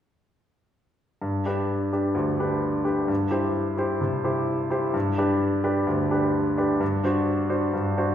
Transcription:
1.22 1.45 G2 soft
1.45 1.89 D4 soft
1.45 1.89 G4 soft
1.45 1.89 B4 soft
1.93 2.14 D4 soft
1.93 2.14 G4 soft
1.93 2.14 B4 soft
2.15 2.38 D2 soft
2.39 2.82 D4 soft
2.39 2.82 G4 soft
2.39 2.82 B4 soft
2.84 3.06 D4 soft
2.84 3.06 G4 soft
2.84 3.06 B4 soft
3.08 3.31 G2 soft
3.31 3.73 E4 soft
3.31 3.74 G4 soft
3.31 3.74 C5 soft
3.77 3.98 E4 soft
3.77 3.99 G4 soft
3.77 3.99 C5 soft
4.01 4.23 C3 soft
4.24 4.67 E4 soft
4.24 4.67 G4 soft
4.24 4.67 C5 soft
4.70 4.91 E4 soft
4.70 4.92 G4 soft
4.70 4.92 C5 soft
4.94 5.16 G2 soft
5.18 5.60 D4 soft
5.18 5.60 G4 soft
5.18 5.60 B4 soft
5.64 5.85 D4 soft
5.64 5.85 G4 soft
5.64 5.85 B4 soft
5.87 6.09 D2 soft
6.11 6.53 D4 soft
6.11 6.53 G4 soft
6.11 6.54 B4 soft
6.57 6.78 D4 soft
6.57 6.79 G4 soft
6.57 6.79 B4 soft
6.80 7.03 G2 soft
7.04 7.46 D4 soft
7.04 7.47 F#4 soft
7.04 7.47 C5 soft
7.49 7.71 D4 soft
7.49 7.71 F#4 soft
7.49 7.71 C5 soft
7.73 7.97 G2 soft
7.97 8.15 D4 soft
7.97 8.15 F#4 soft
7.97 8.15 C5 soft

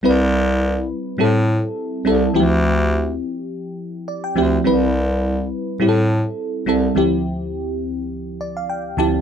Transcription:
0.03 0.87 C2 loud
0.03 1.10 G3 medium
0.03 1.11 C4 medium
0.03 1.11 E4 medium
0.03 1.12 B4 loud
1.18 1.65 A2 loud
1.18 1.99 G3 medium
1.18 1.99 C4 medium
1.18 2.00 E4 medium
1.18 2.00 A4 loud
2.05 2.29 C2 medium
2.05 2.32 G3 medium
2.05 2.33 C4 medium
2.05 2.33 E4 medium
2.05 2.33 A4 loud
2.34 3.17 D2 loud
2.34 2.41 E3 medium
2.34 3.41 C4 medium
2.34 3.42 E4 medium
2.34 3.42 G4 loud
2.40 3.44 F3 medium
4.08 4.23 D5 medium
4.24 4.63 G5 medium
4.36 4.60 D2 loud
4.36 4.63 F3 medium
4.36 4.63 C4 medium
4.36 4.64 E4 medium
4.36 4.64 G4 loud
4.64 5.48 C2 loud
4.64 5.72 G3 medium
4.64 5.72 C4 medium
4.64 5.73 E4 medium
4.64 5.73 B4 loud
5.80 6.27 A2 loud
5.80 6.60 G3 medium
5.80 6.61 C4 medium
5.80 6.61 E4 medium
5.80 5.89 G4 medium
5.89 6.65 A4 loud
6.66 6.91 C2 medium
6.66 6.94 G3 medium
6.66 6.94 C4 medium
6.66 6.94 E4 medium
6.66 6.95 A4 loud
6.95 8.03 D2 medium
6.95 8.03 F3 medium
6.95 8.03 C4 medium
6.95 8.03 E4 medium
6.95 8.04 G4 loud
8.41 8.55 D5 medium
8.57 8.69 F5 medium
8.70 8.96 G5 medium
8.97 9.21 D2 medium
8.97 9.21 F3 medium
8.97 9.21 C4 medium
8.97 9.21 E4 medium
8.97 9.21 G4 loud
8.97 9.21 A5 medium

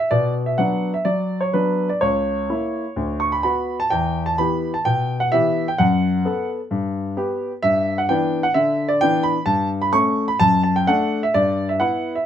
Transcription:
0.00 0.10 E5 medium
0.11 0.57 B2 medium
0.11 0.32 D5 medium
0.46 0.58 E5 soft
0.58 0.93 F#3 soft
0.58 0.93 B3 soft
0.58 0.93 D4 soft
0.58 0.90 F#5 medium
0.94 1.06 E5 medium
1.05 1.52 F#3 soft
1.05 1.41 D5 medium
1.41 1.53 C#5 medium
1.53 1.88 F#3 soft
1.53 1.88 B3 soft
1.53 1.88 D4 soft
1.53 1.89 B4 medium
1.89 2.01 D5 medium
2.01 2.48 C#2 soft
2.01 3.16 C#5 medium
2.50 2.84 A#3 soft
2.50 2.84 E4 soft
2.96 3.42 D2 medium
3.20 3.32 C#6 medium
3.32 3.42 B5 medium
3.43 3.78 B3 soft
3.43 3.78 F#4 soft
3.43 3.75 B5 medium
3.80 3.91 A5 medium
3.90 4.37 E2 medium
3.90 4.22 G5 medium
4.26 4.38 A5 medium
4.38 4.72 E3 soft
4.38 4.73 B3 soft
4.38 4.73 G4 soft
4.38 4.70 B5 medium
4.74 4.85 A5 medium
4.85 5.35 B2 soft
4.85 5.17 G5 medium
5.20 5.32 F#5 medium
5.32 5.66 E3 soft
5.32 5.67 B3 soft
5.32 5.67 G4 soft
5.32 5.67 E5 medium
5.68 5.79 G5 medium
5.78 6.24 F#2 medium
5.78 6.48 F#5 medium
6.25 6.58 B3 soft
6.25 6.59 A4 soft
6.71 7.16 G2 medium
7.17 7.51 B3 soft
7.17 7.51 G4 soft
7.63 8.09 G2 medium
7.63 7.98 E5 medium
7.98 8.10 F#5 medium
8.09 8.43 E3 soft
8.09 8.43 B3 soft
8.09 8.44 D4 soft
8.09 8.44 G5 medium
8.43 8.56 F#5 medium
8.54 9.04 D3 soft
8.54 8.90 E5 medium
8.88 9.01 D5 medium
9.01 9.35 E3 soft
9.01 9.36 B3 soft
9.01 9.36 D4 medium
9.01 9.22 G5 loud
9.23 9.45 B5 medium
9.46 9.92 G2 medium
9.46 9.67 A5 medium
9.82 9.94 B5 medium
9.93 10.26 A3 soft
9.93 10.27 C#4 soft
9.93 10.25 C#6 medium
10.28 10.40 B5 medium
10.40 10.86 F#2 soft
10.40 10.61 A5 loud
10.63 10.75 A5 medium
10.76 10.87 G5 medium
10.87 11.21 A3 soft
10.87 11.21 D4 soft
10.87 11.22 F#5 medium
11.23 11.34 E5 medium
11.34 11.79 G2 medium
11.34 11.69 D5 medium
11.69 11.81 E5 medium
11.80 12.15 B3 soft
11.80 12.15 E4 soft
11.80 12.12 F#5 medium
12.15 12.26 E5 medium

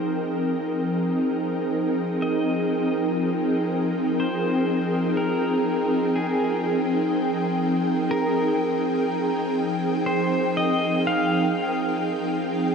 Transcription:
0.00 12.75 F3 medium
0.00 12.75 C4 medium
0.00 12.75 D#4 medium
0.00 12.75 G#4 medium
0.00 12.75 A#4 medium
0.00 1.21 C5 medium
0.00 12.75 G5 medium
2.22 4.19 D#5 loud
4.20 5.20 C5 medium
5.17 6.18 A#4 medium
6.16 7.59 G#4 medium
8.11 9.55 A#4 loud
10.06 10.58 C5 medium
10.57 11.07 D#5 medium
11.07 12.75 F5 medium

